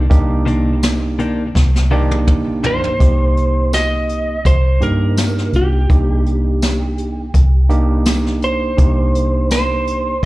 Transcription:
0.10 fingered electric bass C2, tine electric piano A#3 D4 D#4 G4, kick, closed hi-hat
0.46 clean electric guitar C3 D#3 A#3 D4, closed hi-hat
0.83 snare, closed hi-hat, tambourine
1.19 clean electric guitar C3 D#3 A#3 D4, closed hi-hat
1.55 fingered electric bass C2, kick, snare
1.76 snare
1.91 clean electric guitar C3 D#3 A#3 D4, tine electric piano A#3 D4 D#4 G4
2.11 high tom
2.27 kick, mid tom
2.64 clean electric guitar C3 D#3 A#3 D4, lead electric guitar C5, floor tom
2.84 floor tom
2.99 fingered electric bass C2, tine electric piano A#3 C4 D#4 G4, kick, closed hi-hat
3.37 closed hi-hat
3.73 lead electric guitar D#5, snare, closed hi-hat, tambourine
4.09 closed hi-hat
4.45 fingered electric bass C2, lead electric guitar C5, kick, closed hi-hat
4.81 fingered electric bass G2, tine electric piano A#3 D4 D#4 G4, lead electric guitar A#4, closed hi-hat
5.17 snare, closed hi-hat, tambourine
5.38 snare
5.53 fingered electric bass C2, lead electric guitar G4, closed hi-hat
5.89 fingered electric bass C2, tine electric piano A#3 D4 D#4 G4, kick, closed hi-hat
6.26 closed hi-hat
6.62 snare, closed hi-hat, tambourine
6.98 closed hi-hat
7.34 fingered electric bass C2, kick, closed hi-hat
7.69 tine electric piano A#3 D4 D#4 G4, closed hi-hat
8.06 snare, closed hi-hat, tambourine
8.26 snare
8.42 lead electric guitar C5, closed hi-hat
8.77 fingered electric bass C2, tine electric piano A#3 D4 D#4 G4, kick, closed hi-hat
9.15 closed hi-hat
9.51 lead electric guitar C5, snare, closed hi-hat, tambourine
9.87 closed hi-hat

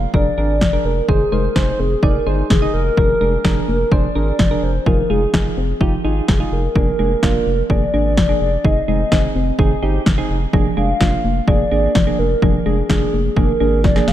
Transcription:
Already playing: soft synth lead F5
0.14 analog synth bass F1, synth arpeggio sound F3, synth keys D4 G#4 A#4, soft synth lead D5, kick
0.38 analog synth bass G#1, synth arpeggio sound D4, synth keys D4 G#4 A#4
0.61 analog synth bass F1, synth arpeggio sound F3, kick, snare
0.73 synth keys D4 G#4 A#4
0.85 analog synth bass F1, soft synth lead A#4
1.09 analog synth bass F1, synth arpeggio sound D#3, synth keys D#4 G#4 C5, soft synth lead G#4, kick
1.32 analog synth bass F1, synth arpeggio sound G#3, synth keys D#4 G#4 C5, soft synth lead A#4
1.56 analog synth bass F1, synth arpeggio sound D#3, synth keys D#4 G#4 C5, soft synth lead C5, kick, snare
1.79 analog synth bass F1, synth arpeggio sound C4, soft synth lead G#4
2.03 analog synth bass F1, synth arpeggio sound D#3, synth keys D#4 G#4 D5, soft synth lead A#4, kick
2.26 analog synth bass G1, synth arpeggio sound D#4, synth keys D#4 G#4 C5, soft synth lead G#4
2.50 analog synth bass F1, synth arpeggio sound D#3, soft synth lead G#4, kick, snare
2.62 synth keys D#4 G#4 D#5
2.74 analog synth bass F1, soft synth lead A#4
2.97 analog synth bass F1, synth arpeggio sound F3, synth keys D4 G#4 A#4, kick
3.21 analog synth bass F1, synth arpeggio sound G#3, synth keys D4 G#4 A#4
3.44 analog synth bass F1, synth arpeggio sound F3, synth keys D4 G#4 A#4, kick, snare
3.68 analog synth bass F1, synth arpeggio sound A#3
3.92 analog synth bass F1, synth arpeggio sound F3, synth keys D4 G#4 C5, soft synth lead D5, kick
4.15 analog synth bass G#1, synth arpeggio sound D4, synth keys D4 G#4 A#4
4.27 soft synth lead D5
4.39 analog synth bass F1, synth arpeggio sound F3, kick, snare
4.51 synth keys D4 G#4 A#4
4.63 analog synth bass F1, soft synth lead C5
4.86 analog synth bass F1, synth arpeggio sound F3, synth keys D#4 F4 G#4, soft synth lead A#4, kick
5.10 analog synth bass F1, synth arpeggio sound G#3, synth keys D#4 F4 G#4, soft synth lead G#4
5.34 analog synth bass F1, synth arpeggio sound F3, synth keys D#4 F4 G#4, kick, snare
5.57 analog synth bass F1, synth arpeggio sound C4
5.81 analog synth bass F1, synth arpeggio sound F3, synth keys D#4 F4 G4, kick
6.04 analog synth bass G#1, synth arpeggio sound D#4, synth keys D#4 F4 G#4
6.28 analog synth bass F1, synth arpeggio sound F3, soft synth lead G#4, kick, snare
6.40 synth keys D#4 F4 G#4
6.52 analog synth bass F1, soft synth lead A#4
6.75 analog synth bass F1, synth arpeggio sound F3, synth keys A#3 D4 G#4, kick
6.99 analog synth bass F1, synth arpeggio sound G#3, synth keys A#3 D4 G#4
7.23 analog synth bass F1, synth arpeggio sound F3, synth keys A#3 D4 F4, kick, snare
7.46 analog synth bass F1, synth arpeggio sound A#3
7.70 analog synth bass F1, synth arpeggio sound F3, synth keys A#3 D4 G#4, soft synth lead D5, kick
7.94 analog synth bass G#1, synth keys A#3 D4 G#4, synth arpeggio sound D4
8.05 soft synth lead D5
8.17 analog synth bass F1, synth arpeggio sound F3, kick, snare
8.29 synth keys A#3 D4 G#4
8.41 analog synth bass F1, soft synth lead D5
8.64 analog synth bass F1, synth arpeggio sound D#3, synth keys C4 D#4 G#4, soft synth lead D#5, kick
8.88 analog synth bass F1, synth arpeggio sound G#3, synth keys C4 D#4 G#4, soft synth lead D#5
9.12 analog synth bass F1, synth arpeggio sound D#3, synth keys C4 D#4 G#4, kick, snare
9.35 analog synth bass F1, synth arpeggio sound C4
9.59 analog synth bass F1, synth arpeggio sound D#3, synth keys C4 D#4 G#4, kick
9.83 analog synth bass G1, synth keys C4 D#4 G4, synth arpeggio sound D#4
10.06 analog synth bass F1, synth arpeggio sound D#3, kick, snare
10.18 synth keys C4 D#4 G#4
10.30 analog synth bass F1
10.53 analog synth bass F1, synth arpeggio sound F3, synth keys A#3 D4 G#4, kick
10.77 analog synth bass F1, synth arpeggio sound G#3, synth keys A#3 D4 G#4, soft synth lead F5
11.01 analog synth bass F1, synth arpeggio sound F3, synth keys A#3 D4 F4, kick, snare
11.24 analog synth bass F1, synth arpeggio sound A#3
11.48 analog synth bass F1, synth arpeggio sound F3, synth keys A#3 D4 G#4, soft synth lead D5, kick
11.71 analog synth bass G#1, synth keys A#3 D4 G#4, synth arpeggio sound D4
11.95 analog synth bass F1, synth arpeggio sound F3, kick, snare
12.07 synth keys A#3 D4 G#4
12.19 analog synth bass F1, soft synth lead A#4
12.42 analog synth bass F1, synth arpeggio sound F3, synth keys A#3 D4 G#4, kick
12.59 soft synth lead A#4
12.66 analog synth bass F1, synth arpeggio sound G#3, synth keys A#3 D4 G#4, soft synth lead G#4
12.90 analog synth bass F1, synth arpeggio sound F3, synth keys A#3 D4 G#4, kick, snare
13.13 analog synth bass F1, synth arpeggio sound A#3
13.37 analog synth bass F1, synth arpeggio sound F3, synth keys A#3 D4 G#4, soft synth lead A#4, kick
13.60 analog synth bass G#1, synth keys A#3 D4 G#4, synth arpeggio sound D4
13.84 analog synth bass F1, synth arpeggio sound F3, soft synth lead D5, kick, snare
13.96 synth keys A#3 D4 G#4, snare
14.08 analog synth bass F1, soft synth lead F5, snare

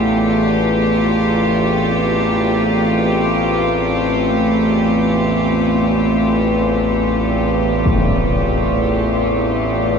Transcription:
Already playing: synth drone A1 E2, cello section A3 D4 F4 G4
0.11 synth drone A1 E2
1.65 cello section C4
7.86 impact

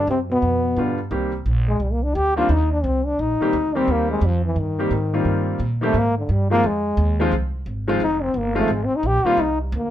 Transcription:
0.07 upright bass F#2, trombone C3 C4
0.30 trombone B2 B3
0.42 upright bass F2
0.77 upright bass G2, grand piano D3 G3 B3 F4
1.11 upright bass C2, grand piano D#3 G3 A#3 C4 G4
1.46 upright bass A#1
1.68 trombone G#3
1.80 upright bass C2, trombone G3
1.92 trombone A#3
2.03 trombone D4
2.15 upright bass D2, trombone G4
2.36 grand piano D#3 G3 A#3 C4 D4, trombone F4
2.49 upright bass D#2, trombone D#4
2.72 trombone D4
2.84 upright bass C2, trombone C4
3.06 trombone D4
3.19 upright bass A#1, trombone D#4
3.40 grand piano D#3 G3 A#3 C4 G4, muted upright bass stroke
3.53 upright bass D2
3.75 grand piano D#3 G3 A#3 C4 G4, trombone C4
3.88 upright bass D#2
3.92 trombone A#3
4.11 trombone G#3
4.21 upright bass F2, trombone F3
4.45 trombone E3
4.56 upright bass G2, trombone D#3
4.79 grand piano D#3 G3 A#3 C4 G4
4.91 upright bass G#2
5.14 grand piano D#3 G3 A#3 C4 F4
5.25 upright bass G2
5.60 upright bass A#2
5.81 grand piano D#3 G3 A#3 C4 G4, trombone A3
5.94 upright bass G#2
5.98 trombone A#3
6.18 trombone D3
6.29 upright bass G2, trombone G3
6.50 grand piano D#3 F3 G#3 C4 F4, trombone A#3
6.64 upright bass F2, trombone G#3
6.97 upright bass D#2
7.19 grand piano D#3 F3 G#3 C4 F4
7.32 upright bass C2
7.66 upright bass G#1
7.88 grand piano D#3 F3 G#3 C4 F4
8.00 upright bass F1, trombone D#4
8.23 trombone C4
8.34 upright bass G1
8.38 trombone A#3
8.55 grand piano D#3 F3 G#3 C4 F4, trombone A3
8.68 upright bass G#1
8.73 trombone G#3
8.85 trombone C4
8.90 muted upright bass stroke
8.96 trombone D#4
9.03 upright bass A#1, trombone G4
9.24 grand piano D#3 G3 A#3 C4 F4, trombone F4, muted upright bass stroke
9.37 upright bass C2, trombone D#4
9.61 trombone G3
9.72 upright bass D2, trombone A#3

